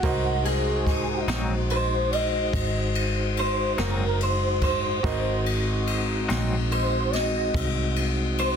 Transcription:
Already playing: F#4
0.02 C2 G#3 D#4 F#4 A#4 C5 D#5, kick, ride
0.45 G#4, ride
0.87 kick, ride
1.28 A#1 G#2 F#3 C4 D#4, snare, ride
1.70 C5, ride
2.13 D#5, ride
2.53 G#1, kick, ride
2.95 ride
3.37 C5, ride
3.78 F#1 G#2 F#3 C4 D#4 A#4, snare, ride
4.21 C5, ride
4.61 C5, kick, ride
5.03 G#1 G#3 C4 D#4 F#4 A#4 C5 D#5, kick, ride
5.46 ride
5.87 ride
6.29 A#1 G#2 F#3 C4 D#4, snare, ride
6.72 C5, ride
7.13 D#5, snare, ride
7.54 C2, kick, ride
7.96 ride
8.38 C5, ride

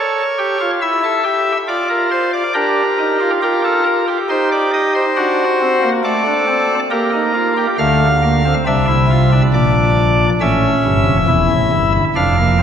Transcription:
Already playing: A4 C#5
0.38 G4
0.61 F4
0.82 E4 E5
1.03 A4
1.24 G4
1.68 F4 D5
1.90 A#4
2.11 C5
2.33 D5
2.54 D4 G4 A#4
2.98 D#4
3.20 F4
3.42 F4 G4 A#4
3.64 A4
3.86 A#4
4.08 G4
4.29 D#4 C5
4.52 D5
4.74 D#5
4.95 C5
5.17 D4 F#4
5.61 C4
5.82 A#3
6.04 A3 A4 D5
6.26 D4
6.47 C4
6.91 A#3 G4 A#4
7.13 D#4
7.34 F4
7.57 G4
7.78 D2 D3 A3 F5
8.22 A#3
8.45 C4
8.66 C2 C3 D4 E5
8.88 E4
9.10 F4
9.32 D4
9.54 A#1 A#2 D5
10.41 A1 A2 C#4 E5
10.85 G1 G2
11.05 F1 F2
11.28 E1 E2 E4
11.51 A1 A2
11.72 G1 G2
12.15 F1 F2 D4 F5
12.38 A#3
12.59 C4

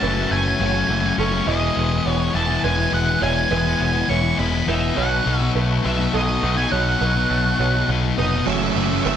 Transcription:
Already playing: F#2 C#3 C#4 E4 A4 C#5 F#5 A5
0.01 F#1 E3 F#3 A3 C#4 F#4 B4
0.16 A3 C#4 F#4
0.31 F#1 A3 G#5
0.59 F#1 C#3 F#3 A3 C#4 F#4 C#5
0.73 A3 C#4 F#4
0.88 F#1 E3 F#3 A3 C#4 F#4
1.03 A3 C#4 F#4
1.17 F#1 F#3 A3 C#4 F#4 A4 C#5
1.31 A3 C#4 F#4
1.45 E1 E3 G#3 B3 E4 B4 D#5 G#5
1.75 E1 E3 G#3 B3 E4
1.90 G#3 B3 E4
2.05 E1 B3 C#5
2.12 C#5
2.34 E1 E3 G#3 B3 E4 A5
2.48 G#3 B3 E4
2.63 E1 E3 G#3 B3 E4 B4 G#5
2.77 G#3 B3 E4
2.91 E1 E3 G#3 B3 E4 F#5
3.06 G#3 B3 E4
3.20 E1 E3 G#3 B3 E4 C#5 G#5
3.50 E1 E3 G#3 B3 E4 B4
3.64 G#3 B3 E4
3.80 E1 B3
4.08 E1 E3 G#3 B3 E4 C#5 C#6
4.22 G#3 B3 E4
4.37 E1 E3 G#3 B3 E4 B5
4.51 G#3 B3 E4
4.66 E1 E3 G#3 B3 D#4 E4 B4 E5
4.81 G#3 B3 E4
4.95 B1 B2 F#3 B3 D#4 F#4 A4 C#5 F#5
5.25 B1 B2 F#3 B3 D#4
5.39 F#3 B3 D#4 E5
5.55 B1 A3 B4
5.83 B1 B2 F#3 B3 D#4 E5
5.97 F#3 B3 D#4
6.12 B1 B2 F#3 B3 D#4 A4 D#5
6.27 F#3 B3 D#4
6.41 B1 B2 F#3 B3 D#4
6.55 F#3 B3 D#4 G#5
6.71 B1 B2 F#3 B3 D#4 C#5 F#5
7.00 B1 B2 F#3 B3 D#4 B4
7.15 F#3 B3 D#4
7.30 B1 A3
7.59 B1 B2 F#3 B3 D#4 C#5
7.73 F#3 B3 D#4
7.88 B1 B2 F#3 B3 D#4
8.03 F#3 B3 D#4
8.17 F1 B2 F#3 B3 D#4 B4 D#5
8.32 F#3 B3 D#4
8.47 F#1 F#2 C#3 F#3 A3 C#4 C#5 E5
8.75 F#1 C#3 E3 F#3 A3 C#4
8.90 F#3 A3 C#4
9.05 F#1 F#2 C#3 F#3 A3 C#4 B4 E5

